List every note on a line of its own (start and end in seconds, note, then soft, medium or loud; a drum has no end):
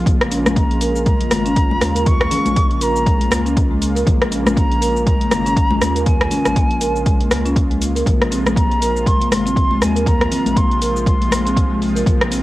0.00 8.02 G#3 medium
0.00 8.02 F4 medium
0.05 1.16 A#1 loud
0.05 8.02 C#3 medium
0.05 0.20 A#3 medium
0.05 8.02 A#3 medium
0.05 kick loud
0.05 closed hi-hat medium
0.05 low conga loud
0.05 cabasa soft
0.21 cross-stick loud
0.21 closed hi-hat soft
0.31 0.39 C#4 loud
0.31 open hi-hat loud
0.31 cabasa medium
0.46 cross-stick medium
0.46 closed hi-hat soft
0.46 high conga loud
0.46 cabasa soft
0.56 0.70 A#3 medium
0.56 1.03 A#5 medium
0.56 kick loud
0.56 closed hi-hat medium
0.56 cabasa soft
0.71 closed hi-hat soft
0.81 0.95 A#4 medium
0.81 open hi-hat loud
0.81 cabasa loud
0.96 cabasa medium
1.06 1.20 G#3 medium
1.06 2.08 A#5 loud
1.06 kick loud
1.06 closed hi-hat medium
1.06 cabasa soft
1.20 1.30 A#3 medium
1.20 closed hi-hat soft
1.20 high conga medium
1.31 1.78 G#1 medium
1.31 cross-stick medium
1.31 open hi-hat loud
1.31 high conga loud
1.31 cabasa medium
1.46 1.51 C#4 loud
1.46 closed hi-hat soft
1.46 cabasa medium
1.56 kick loud
1.56 closed hi-hat medium
1.56 cabasa soft
1.70 1.76 G#3 loud
1.70 high conga loud
1.81 2.28 D#2 medium
1.81 cross-stick medium
1.81 open hi-hat medium
1.81 high conga medium
1.81 cabasa medium
1.95 2.01 A#4 loud
1.95 closed hi-hat soft
1.95 cabasa soft
2.06 2.84 C#6 loud
2.06 kick loud
2.06 closed hi-hat medium
2.06 low conga loud
2.06 cabasa soft
2.21 cross-stick loud
2.21 closed hi-hat soft
2.31 2.39 C#4 loud
2.31 open hi-hat medium
2.31 high conga medium
2.31 low conga medium
2.31 cabasa loud
2.46 3.28 A#1 medium
2.46 closed hi-hat soft
2.46 high conga loud
2.46 cabasa medium
2.56 2.70 A#3 medium
2.56 kick loud
2.56 closed hi-hat medium
2.56 cabasa soft
2.71 closed hi-hat soft
2.81 2.95 A#4 loud
2.81 3.82 A#5 loud
2.81 open hi-hat loud
2.81 cabasa loud
2.96 cabasa medium
3.06 3.20 G#3 medium
3.06 kick loud
3.06 closed hi-hat medium
3.06 cabasa soft
3.21 3.30 A#3 medium
3.21 closed hi-hat soft
3.21 high conga medium
3.31 4.04 C#2 medium
3.31 cross-stick loud
3.31 open hi-hat medium
3.31 high conga loud
3.31 cabasa loud
3.46 3.52 C#4 loud
3.46 closed hi-hat soft
3.46 cabasa medium
3.57 kick loud
3.57 closed hi-hat medium
3.57 cabasa soft
3.71 3.77 G#3 loud
3.82 open hi-hat medium
3.82 cabasa medium
3.95 4.01 A#4 loud
3.95 open hi-hat medium
3.95 cabasa medium
4.06 5.17 A#1 loud
4.06 4.20 A#3 medium
4.06 kick loud
4.06 closed hi-hat medium
4.06 low conga loud
4.06 cabasa soft
4.22 cross-stick loud
4.22 closed hi-hat soft
4.31 4.39 C#4 loud
4.31 open hi-hat medium
4.31 cabasa loud
4.46 cross-stick medium
4.46 closed hi-hat soft
4.46 high conga loud
4.46 cabasa medium
4.56 4.70 A#3 medium
4.56 5.03 A#5 loud
4.56 kick loud
4.56 closed hi-hat medium
4.56 cabasa soft
4.71 closed hi-hat soft
4.81 4.95 A#4 loud
4.81 open hi-hat medium
4.81 cabasa loud
4.97 cabasa medium
5.06 5.20 G#3 medium
5.06 6.03 A#5 loud
5.06 kick loud
5.06 closed hi-hat medium
5.06 cabasa soft
5.21 5.30 A#3 medium
5.21 closed hi-hat soft
5.21 high conga medium
5.31 5.78 G#1 medium
5.31 cross-stick medium
5.31 open hi-hat medium
5.31 high conga loud
5.31 cabasa medium
5.46 5.52 C#4 loud
5.46 closed hi-hat soft
5.46 cabasa medium
5.56 kick loud
5.56 closed hi-hat medium
5.56 cabasa soft
5.71 5.77 G#3 loud
5.71 high conga loud
5.81 6.28 D#2 medium
5.81 cross-stick medium
5.81 open hi-hat medium
5.81 high conga medium
5.81 cabasa medium
5.96 6.02 A#4 loud
5.96 closed hi-hat soft
5.96 cabasa medium
6.06 6.20 A#3 medium
6.06 7.52 G#5 loud
6.06 kick loud
6.06 closed hi-hat medium
6.06 low conga loud
6.06 cabasa soft
6.21 cross-stick loud
6.21 closed hi-hat soft
6.31 6.39 C#4 loud
6.31 open hi-hat medium
6.31 high conga medium
6.31 low conga medium
6.31 cabasa medium
6.46 7.28 A#1 medium
6.46 cross-stick medium
6.46 closed hi-hat soft
6.46 high conga loud
6.46 cabasa medium
6.56 6.70 A#3 medium
6.56 kick loud
6.56 closed hi-hat medium
6.56 cabasa soft
6.71 closed hi-hat soft
6.81 6.95 A#4 loud
6.81 open hi-hat medium
6.81 cabasa loud
6.96 cabasa soft
7.06 7.20 G#3 medium
7.06 kick loud
7.06 closed hi-hat medium
7.06 cabasa soft
7.21 7.30 A#3 medium
7.21 closed hi-hat soft
7.21 high conga medium
7.31 8.03 C#2 loud
7.31 cross-stick loud
7.31 open hi-hat medium
7.31 high conga loud
7.31 cabasa loud
7.46 7.51 C#4 loud
7.46 closed hi-hat soft
7.46 cabasa medium
7.56 kick loud
7.56 closed hi-hat medium
7.56 cabasa soft
7.70 7.76 G#3 loud
7.70 closed hi-hat soft
7.82 open hi-hat medium
7.82 cabasa medium
7.95 8.01 A#4 loud
7.95 open hi-hat soft
7.95 cabasa medium
8.06 9.16 A#1 loud
8.06 12.43 C3 medium
8.06 12.43 F3 medium
8.06 12.43 G#3 medium
8.06 8.20 A#3 medium
8.06 12.43 F4 loud
8.06 kick loud
8.06 closed hi-hat medium
8.06 low conga loud
8.06 cabasa soft
8.21 cross-stick medium
8.21 closed hi-hat soft
8.31 8.39 C4 loud
8.31 open hi-hat medium
8.31 cabasa medium
8.46 cross-stick medium
8.46 closed hi-hat soft
8.46 high conga loud
8.46 cabasa medium
8.56 8.70 A#3 medium
8.56 9.09 A#5 loud
8.56 kick loud
8.56 closed hi-hat medium
8.56 cabasa soft
8.71 closed hi-hat soft
8.81 8.95 A#4 loud
8.81 open hi-hat medium
8.81 cabasa loud
8.97 cabasa soft
9.06 9.20 G#3 medium
9.06 9.31 C6 loud
9.06 kick loud
9.06 closed hi-hat medium
9.06 cabasa soft
9.21 9.30 A#3 medium
9.21 closed hi-hat soft
9.21 high conga medium
9.32 9.78 G#1 medium
9.32 9.84 C6 loud
9.32 cross-stick medium
9.32 open hi-hat medium
9.32 high conga loud
9.32 cabasa medium
9.46 9.52 C4 loud
9.46 closed hi-hat soft
9.46 cabasa soft
9.56 kick loud
9.56 closed hi-hat medium
9.56 cabasa soft
9.71 9.77 G#3 loud
9.71 high conga medium
9.81 10.28 D#2 medium
9.81 10.09 G#5 loud
9.81 cross-stick medium
9.81 open hi-hat medium
9.81 high conga medium
9.81 cabasa medium
9.96 10.02 A#4 loud
9.96 closed hi-hat soft
9.96 cabasa medium
10.06 10.20 A#3 medium
10.06 10.59 A#5 loud
10.06 kick loud
10.06 closed hi-hat medium
10.06 low conga loud
10.06 cabasa soft
10.21 cross-stick medium
10.21 closed hi-hat soft
10.32 10.39 C4 loud
10.32 open hi-hat medium
10.32 high conga medium
10.32 low conga medium
10.32 cabasa medium
10.46 11.28 A#1 medium
10.46 closed hi-hat soft
10.46 high conga loud
10.46 cabasa soft
10.56 10.70 A#3 medium
10.56 11.06 C6 loud
10.56 kick loud
10.56 closed hi-hat medium
10.56 cabasa soft
10.71 closed hi-hat soft
10.82 10.95 A#4 loud
10.82 open hi-hat medium
10.82 cabasa medium
10.96 cabasa soft
11.06 11.20 G#3 medium
11.06 11.78 C6 loud
11.06 kick loud
11.06 closed hi-hat medium
11.06 cabasa soft
11.20 11.30 A#3 medium
11.20 closed hi-hat soft
11.20 high conga medium
11.31 12.03 A#1 loud
11.31 cross-stick medium
11.31 open hi-hat medium
11.31 high conga loud
11.31 cabasa medium
11.45 11.51 C4 loud
11.45 closed hi-hat soft
11.45 cabasa medium
11.56 kick loud
11.56 closed hi-hat medium
11.56 cabasa soft
11.70 11.76 G#3 loud
11.82 open hi-hat medium
11.82 cabasa medium
11.95 12.01 A#4 loud
11.95 open hi-hat medium
11.95 cabasa soft
12.06 12.43 A#1 loud
12.06 kick loud
12.06 closed hi-hat medium
12.06 low conga loud
12.06 cabasa soft
12.21 cross-stick loud
12.21 closed hi-hat soft
12.31 12.39 C4 loud
12.31 open hi-hat medium
12.31 cabasa medium